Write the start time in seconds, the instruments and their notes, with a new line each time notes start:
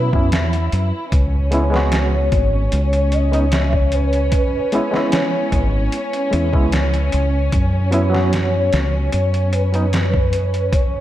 Already playing: fingered electric bass B2, string section E4, soft synth lead B4
0.13 fingered electric bass F#2, reed electric piano F#3 B3 C#4 E4, kick
0.32 fingered electric bass E2, snare, closed hi-hat
0.53 closed hi-hat
0.72 fingered electric bass F#2, closed hi-hat
1.12 fingered electric bass C#2, string section C#4, kick, closed hi-hat
1.51 reed electric piano G#3 B3 C#4 E4, closed hi-hat
1.70 reed electric piano G#3 B3
1.74 reed electric piano C#4 F#4, snare
1.92 soft synth lead C#5, snare, closed hi-hat
2.32 fingered electric bass G#1, kick, closed hi-hat
2.72 fingered electric bass C#2, soft synth lead C#5, closed hi-hat
2.93 closed hi-hat
3.12 soft synth lead D#5, closed hi-hat
3.32 reed electric piano G#3 B3 C#4 D#4, closed hi-hat
3.52 soft synth lead E5, snare, closed hi-hat
3.73 soft synth lead C#5, kick
3.92 soft synth lead B4, closed hi-hat
4.13 closed hi-hat
4.32 kick, closed hi-hat
4.72 reed electric piano G#3 B3 C#4 E4, closed hi-hat
4.91 reed electric piano G#3 B3 C#4, snare
4.97 reed electric piano E4
5.12 snare, closed hi-hat
5.52 fingered electric bass G#1, kick, closed hi-hat
5.92 closed hi-hat
6.13 closed hi-hat
6.31 fingered electric bass E2, reed electric piano G#3 B3 C#4 E4, closed hi-hat
6.52 fingered electric bass C#2, reed electric piano G#3 B3 C#4 E4, kick
6.72 snare, closed hi-hat
6.94 closed hi-hat
7.12 fingered electric bass C#2, closed hi-hat
7.52 fingered electric bass F#2, kick, closed hi-hat
7.91 reed electric piano F#3 B3 C#4 E4, closed hi-hat
8.10 reed electric piano F#3 B3 C#4
8.15 reed electric piano F#4, snare
8.32 soft synth lead C#5, snare, closed hi-hat
8.73 fingered electric bass C#2, snare, closed hi-hat
9.12 fingered electric bass F#2, soft synth lead C#5, closed hi-hat
9.34 closed hi-hat
9.53 soft synth lead B4, closed hi-hat
9.72 reed electric piano F#3 B3 C#4 D#4, closed hi-hat
9.92 soft synth lead B4, snare, closed hi-hat
10.14 kick
10.33 closed hi-hat
10.54 closed hi-hat
10.73 soft synth lead C#5, kick, closed hi-hat